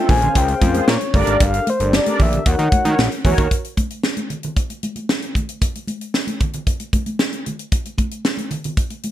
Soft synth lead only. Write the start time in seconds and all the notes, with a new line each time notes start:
Already playing: G5
0.11 G#5
0.37 G5
0.90 C#5
1.16 D5
1.43 F5
1.70 C5
1.96 D5
2.22 E5
2.48 F#5